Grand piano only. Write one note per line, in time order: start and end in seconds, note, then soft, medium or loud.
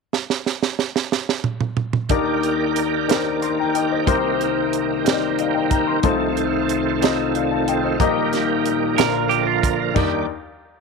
2.10 4.04 D#2 medium
2.10 4.04 D#3 medium
2.10 3.03 D4 medium
2.10 3.03 D#4 medium
2.10 3.03 G4 medium
2.10 3.04 A#4 medium
2.10 3.04 D5 medium
3.08 4.02 D4 soft
3.08 4.01 D#4 soft
3.08 4.02 G4 soft
3.08 4.02 A#4 medium
3.08 3.15 C5 soft
3.16 3.45 D5 medium
3.42 3.57 C6 soft
3.59 3.73 G5 soft
3.59 3.74 A#5 soft
3.75 3.89 D#5 soft
3.75 3.90 G5 medium
3.91 4.06 C5 soft
3.91 4.22 D#5 soft
4.06 6.00 C2 medium
4.06 6.00 C3 medium
4.06 5.00 C4 medium
4.06 5.00 D#4 medium
4.06 5.00 G4 medium
4.06 5.00 A#4 medium
4.06 5.00 C5 medium
5.04 5.98 C4 medium
5.04 5.98 D#4 soft
5.04 5.98 G4 soft
5.04 5.98 A#4 soft
5.04 5.12 D5 medium
5.12 5.37 D#5 medium
5.38 5.54 D5 soft
5.38 5.53 D#5 soft
5.38 5.54 F5 soft
5.54 5.70 D#5 soft
5.54 5.69 G5 medium
5.70 5.87 G5 soft
5.70 5.87 A#5 medium
5.87 6.19 C6 soft
6.03 7.96 C2 medium
6.03 7.96 C3 medium
6.03 6.96 C4 medium
6.03 6.97 D#4 medium
6.03 6.97 F4 medium
6.03 6.97 A4 medium
6.03 6.97 C5 medium
7.01 7.94 C4 medium
7.01 7.94 D#4 medium
7.01 7.95 F4 medium
7.01 7.95 A4 medium
7.01 7.35 D#5 medium
7.35 7.51 D5 soft
7.35 7.50 F5 medium
7.51 7.67 F5 soft
7.51 7.67 A5 medium
7.68 7.82 D#5 soft
7.68 7.83 G5 medium
7.84 8.15 C5 soft
7.84 8.00 D#5 medium
8.00 8.94 A#1 medium
8.00 8.94 A#2 medium
8.00 8.92 A#3 medium
8.00 8.92 D#4 medium
8.00 8.93 G4 medium
8.00 8.93 A#4 medium
8.00 8.93 D#5 medium
8.98 9.92 A#1 medium
8.98 9.92 A#2 medium
8.98 9.90 A#3 medium
8.98 9.90 D4 soft
8.98 9.90 F4 medium
8.98 9.91 A#4 soft
8.98 9.91 D5 medium
9.94 10.26 D#2 medium
9.94 10.25 D4 medium
9.94 10.26 D#4 medium
9.94 10.26 G4 medium
9.94 10.26 A#4 medium
9.94 10.25 D5 medium